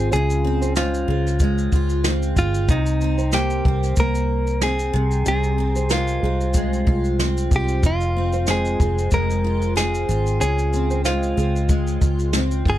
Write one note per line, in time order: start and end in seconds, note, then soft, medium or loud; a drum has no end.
0.00 0.12 F2 medium
0.00 0.76 G#3 medium
0.00 0.44 C4 medium
0.00 1.73 F4 medium
0.11 1.05 C#2 medium
0.11 2.69 C#3 medium
0.11 0.73 G#4 loud
0.11 0.42 C#5 medium
0.11 shaker medium
0.30 shaker soft
0.44 1.08 C4 medium
0.61 0.75 C5 medium
0.61 shaker soft
0.76 1.40 G#3 medium
0.76 2.01 F4 medium
0.76 1.06 C5 medium
0.76 snare loud
0.76 shaker medium
0.94 shaker soft
1.08 1.68 C#2 loud
1.08 2.04 C4 medium
1.08 1.25 G#4 medium
1.26 snare soft
1.26 shaker soft
1.39 2.76 G#3 medium
1.39 kick medium
1.39 shaker medium
1.58 shaker medium
1.72 2.33 C#2 medium
1.72 2.35 F4 medium
1.72 kick medium
1.72 shaker soft
1.89 shaker soft
2.04 3.01 C4 medium
2.04 snare loud
2.04 shaker medium
2.22 shaker medium
2.36 2.66 G1 loud
2.36 2.76 F4 medium
2.36 2.70 F4 medium
2.36 kick medium
2.36 shaker medium
2.54 shaker medium
2.68 3.61 C2 loud
2.68 4.92 C3 medium
2.68 3.36 D#4 loud
2.68 2.99 D#5 medium
2.68 kick loud
2.68 shaker medium
2.86 shaker medium
3.01 3.65 C4 medium
3.01 shaker soft
3.18 3.31 C5 medium
3.18 shaker soft
3.32 3.96 A#3 medium
3.32 3.94 G4 medium
3.32 3.63 C5 medium
3.32 snare loud
3.32 shaker medium
3.50 shaker soft
3.65 3.95 C2 loud
3.65 4.61 C4 medium
3.65 3.82 A#4 medium
3.65 kick medium
3.83 snare soft
3.83 shaker medium
3.96 4.90 C2 medium
3.96 5.01 A#3 medium
3.96 4.63 A#4 loud
3.96 kick medium
3.96 shaker medium
4.15 shaker medium
4.47 shaker soft
4.61 5.58 C4 medium
4.61 5.27 G#4 medium
4.61 snare loud
4.61 shaker medium
4.79 shaker medium
4.93 5.23 C2 medium
4.93 5.25 C3 medium
5.11 shaker medium
5.26 6.19 C2 medium
5.26 7.83 C3 medium
5.26 5.92 G#4 loud
5.26 5.56 D#5 medium
5.26 shaker medium
5.43 shaker soft
5.58 6.23 C4 medium
5.76 5.89 C5 medium
5.76 shaker soft
5.90 6.55 G#3 medium
5.90 7.16 F4 medium
5.90 6.21 A#4 medium
5.90 snare loud
5.90 shaker medium
6.08 shaker soft
6.22 6.83 C2 medium
6.22 7.19 C4 medium
6.22 6.39 G#4 medium
6.41 shaker soft
6.54 8.48 G#3 medium
6.54 kick medium
6.54 shaker medium
6.73 shaker medium
6.87 7.47 C2 medium
6.87 7.51 F4 medium
6.87 kick medium
7.04 shaker soft
7.19 8.16 C4 medium
7.19 snare loud
7.19 shaker medium
7.37 shaker medium
7.51 7.81 C2 medium
7.51 9.44 F4 medium
7.51 kick medium
7.51 shaker medium
7.56 7.86 G4 medium
7.68 shaker medium
7.83 8.76 F1 loud
7.83 10.41 F2 medium
7.83 8.50 F4 medium
7.83 8.14 D#5 medium
7.83 kick loud
7.83 shaker medium
8.01 shaker soft
8.17 8.80 C4 medium
8.33 8.47 C5 medium
8.33 shaker soft
8.47 9.12 G#3 medium
8.47 9.09 G#4 medium
8.47 8.78 C5 medium
8.47 snare loud
8.47 shaker medium
8.65 shaker soft
8.80 9.09 F1 medium
8.80 9.75 C4 medium
8.80 8.96 G#4 medium
8.80 kick medium
8.80 shaker medium
8.98 shaker medium
9.11 10.04 F1 medium
9.11 11.05 G#3 medium
9.11 9.73 A#4 loud
9.11 kick medium
9.11 shaker medium
9.30 shaker medium
9.44 10.08 F4 medium
9.62 shaker soft
9.76 10.73 C4 medium
9.76 10.40 G#4 medium
9.76 snare loud
9.76 shaker medium
9.94 shaker medium
10.09 10.38 G#1 loud
10.09 12.01 F4 medium
10.09 shaker medium
10.26 shaker medium
10.41 11.33 C#2 loud
10.41 12.78 C#3 medium
10.41 11.01 G#4 loud
10.41 10.71 C#5 medium
10.41 shaker medium
10.58 shaker soft
10.73 11.37 C4 medium
10.73 shaker medium
10.90 11.04 C5 medium
10.90 shaker soft
11.05 11.68 G#3 medium
11.05 12.30 F4 medium
11.05 11.35 C5 medium
11.05 snare loud
11.05 shaker medium
11.23 shaker soft
11.37 11.97 C#2 loud
11.37 12.34 C4 medium
11.37 11.53 G#4 medium
11.37 shaker medium
11.56 shaker soft
11.69 12.78 G#3 medium
11.69 kick medium
11.69 shaker medium
11.87 shaker medium
12.01 12.62 C#2 medium
12.01 12.66 F4 medium
12.01 kick medium
12.01 shaker soft
12.19 shaker soft
12.33 12.78 C4 medium
12.33 snare loud
12.33 shaker medium
12.51 shaker medium
12.65 12.78 G1 medium
12.65 12.78 F4 medium
12.65 kick medium
12.70 12.78 G#4 medium